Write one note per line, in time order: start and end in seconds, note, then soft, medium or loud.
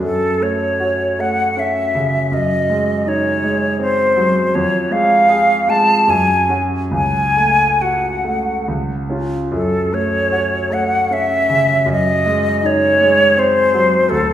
0.00 2.29 F#2 soft
0.00 0.44 A4 soft
0.40 1.04 A3 soft
0.40 1.22 C#5 soft
0.80 1.42 F#4 soft
1.19 1.80 A3 soft
1.19 1.61 F#5 soft
1.57 2.17 C#4 soft
1.57 2.35 E5 soft
1.95 2.32 C#3 soft
2.32 4.49 F#2 soft
2.32 3.10 D#5 soft
2.70 3.29 G#3 soft
3.06 3.65 D#4 soft
3.06 3.80 C#5 medium
3.44 4.02 G#3 soft
3.79 4.38 C4 soft
3.79 4.56 C5 medium
4.16 4.53 F#3 soft
4.55 6.05 F2 soft
4.55 4.93 C#5 medium
4.91 5.53 G#3 soft
4.91 5.71 F5 medium
5.29 5.92 G#4 soft
5.68 6.08 G#3 soft
5.68 6.11 A5 medium
6.08 6.90 F#2 soft
6.08 6.63 G#5 soft
6.49 6.89 C#4 soft
6.49 6.89 F#4 soft
6.91 8.62 C#2 soft
6.91 7.83 G#5 medium
7.37 8.07 A3 soft
7.81 8.50 F#4 soft
7.81 8.67 F#5 soft
8.25 8.67 A3 soft
8.68 9.49 C#2 soft
9.09 9.47 C#4 soft
9.09 9.48 F4 soft
9.51 11.84 F#2 soft
9.51 9.96 A4 soft
9.92 10.55 A3 soft
9.92 10.74 C#5 medium
10.32 10.94 F#4 soft
10.70 11.33 A3 soft
10.70 11.14 F#5 soft
11.11 11.73 C#4 soft
11.11 11.89 E5 medium
11.49 11.88 C#3 soft
11.86 14.06 F#2 soft
11.91 12.67 D#5 medium
12.26 12.86 G#3 soft
12.63 13.23 D#4 soft
12.63 13.40 C#5 medium
13.01 13.60 G#3 soft
13.37 13.96 C4 soft
13.37 14.11 C5 medium
13.74 14.10 F#3 soft
14.09 14.33 D2 soft
14.09 14.33 A4 medium